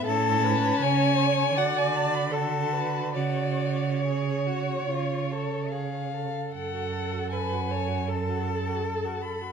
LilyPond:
<<
  \new Staff \with { instrumentName = "Violin" } { \time 4/4 \key fis \minor \tempo 4 = 76 a''4 gis''4 fis''16 gis''16 a''16 b''16 a''4 | d''4 cis''2 eis''4 | fis''4 gis''4 a''4. b''8 | }
  \new Staff \with { instrumentName = "Viola" } { \time 4/4 \key fis \minor a'8 b'8 cis''4 d''4 a'8 b'8 | cis''2.~ cis''8 r8 | a'4 b'8 cis''8 a'2 | }
  \new Staff \with { instrumentName = "Violin" } { \time 4/4 \key fis \minor cis'2 fis'4 fis'4 | fis'4 gis'8 fis'8 eis'8 a'8 gis'8 a'8 | a'16 fis'16 a'16 fis'16 a'16 fis'16 a'16 fis'16 a'16 fis'16 a'16 fis'16 a'16 fis'16 a'16 fis'16 | }
  \new Staff \with { instrumentName = "Cello" } { \clef bass \time 4/4 \key fis \minor a,4 cis4 d2 | cis2 cis4.~ cis16 r16 | fis,1 | }
>>